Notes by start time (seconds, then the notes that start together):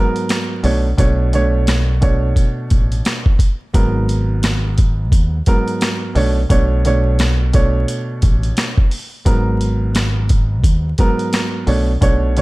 Already playing: G#2 F#3 B3 A#4
0.16 closed hi-hat
0.29 cross-stick, snare, closed hi-hat
0.63 B1 B2 A3 D4 C#5, open hi-hat
0.98 B1 B2 A3 D4 C#5, kick, closed hi-hat
1.33 B2 A3 D4 C#5, closed hi-hat
1.67 cross-stick, snare, closed hi-hat
2.01 B2 A3 D4 C#5, kick, closed hi-hat
2.36 kick, closed hi-hat
2.70 A1, kick, closed hi-hat
2.92 closed hi-hat
3.05 cross-stick, snare, closed hi-hat
3.26 kick
3.39 kick, closed hi-hat
3.73 G#1 G#2 F#3 B3 A#4, kick, closed hi-hat
4.09 closed hi-hat
4.43 cross-stick, snare, closed hi-hat
4.78 kick, closed hi-hat
5.12 D#2, kick, closed hi-hat
5.46 G#2 F#3 B3 A#4, kick, closed hi-hat
5.68 closed hi-hat
5.81 cross-stick, snare, closed hi-hat
6.15 B1 B2 A3 D4 C#5, open hi-hat
6.49 B1 B2 A3 D4 C#5, kick, closed hi-hat
6.85 B2 A3 D4 C#5, closed hi-hat
7.19 cross-stick, snare, closed hi-hat
7.53 B2 A3 D4 C#5, kick, closed hi-hat
7.88 closed hi-hat
8.22 A1, kick, closed hi-hat
8.43 closed hi-hat
8.57 cross-stick, snare, closed hi-hat
8.78 kick
8.91 open hi-hat
9.25 G#1 G#2 F#3 B3 A#4, kick, closed hi-hat
9.61 closed hi-hat
9.95 cross-stick, snare, closed hi-hat
10.29 kick, closed hi-hat
10.64 D#2, kick, closed hi-hat
10.98 G#2 F#3 B3 A#4, kick, closed hi-hat
11.19 closed hi-hat
11.33 cross-stick, snare, closed hi-hat
11.67 B1 B2 A3 D4 C#5, open hi-hat
12.01 B1 B2 A3 D4 C#5, kick, closed hi-hat
12.37 B2 A3 D4 C#5, closed hi-hat